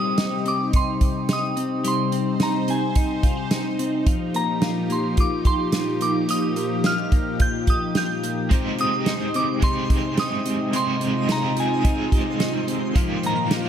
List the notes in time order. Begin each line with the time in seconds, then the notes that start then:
Already playing: C3 G3 C4 D#4 G4 D#6
0.18 D#4, snare, closed hi-hat
0.45 C4 D6, closed hi-hat
0.73 D#4 C6, kick, closed hi-hat
1.01 kick, closed hi-hat
1.29 D#4, snare, closed hi-hat
1.33 D#6
1.57 C4, closed hi-hat
1.84 G3 C5 C6, closed hi-hat
2.12 C4, closed hi-hat
2.40 D#4 A#5, snare, closed hi-hat
2.68 C4 G#5, closed hi-hat
2.96 D#4, kick, closed hi-hat
3.23 F4, kick, closed hi-hat
3.37 G4
3.51 D#4, snare, closed hi-hat
3.79 C4, closed hi-hat
4.06 A#2 F3 G4, kick, closed hi-hat
4.34 A#3 A#5, closed hi-hat
4.62 F4, snare, closed hi-hat
4.90 A#3 C6, closed hi-hat
5.17 F4 D6, kick, closed hi-hat
5.45 G4 C6, kick, closed hi-hat
5.72 F4, snare, closed hi-hat
6.01 A#3 D6, closed hi-hat
6.29 F3 D#6, closed hi-hat
6.56 A#3, closed hi-hat
6.84 F4 F6, snare, closed hi-hat
7.12 A#3, kick, closed hi-hat
7.40 F4 G6, kick, closed hi-hat
7.67 G4 D#6, kick, closed hi-hat
7.95 F4 G6, snare, closed hi-hat
8.23 A#3, closed hi-hat
8.50 C3 G#3 C4 D#4 C5, kick, closed hi-hat
8.54 G4
8.79 C4 D#6, closed hi-hat
9.06 D#4, snare, closed hi-hat
9.34 C4 D6, closed hi-hat
9.60 G#3 C4 D#4 C6, kick, closed hi-hat
9.65 G4
9.90 kick, closed hi-hat
10.17 D#4 D#6, snare, closed hi-hat
10.46 C4, closed hi-hat
10.73 G#3 C4 D#4 F4 G4 D#5 C6, closed hi-hat
11.01 C4, closed hi-hat
11.28 G#3 C4 D#4 G4 C5 A#5, snare, closed hi-hat
11.57 C4 G#5, closed hi-hat
11.83 G#3 C4 D#4, kick, closed hi-hat
12.12 G4, kick, closed hi-hat
12.40 D#4, snare, closed hi-hat
12.67 C4, closed hi-hat
12.95 G#2 A#2 D#3 F3 A#3 D#4 G4 F5, kick, closed hi-hat
13.23 A#3 A#5, closed hi-hat
13.50 F3 A#3 D#4 F4 G4, snare, closed hi-hat